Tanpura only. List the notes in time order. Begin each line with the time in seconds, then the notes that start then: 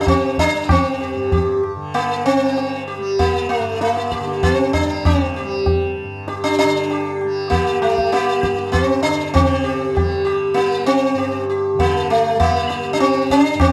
Already playing: G2 D3 G3
0.53 G3
1.15 G2
1.76 D3
2.37 G3
2.98 G3
3.60 G2
4.20 D3
4.82 G3
5.41 G3
6.03 G2
6.64 D3
7.24 G3
7.85 G3
8.43 G2
9.03 D3
9.35 D3
9.95 G3
10.54 G3
11.14 G2
11.74 D3
12.35 G3
12.94 G3
13.54 G2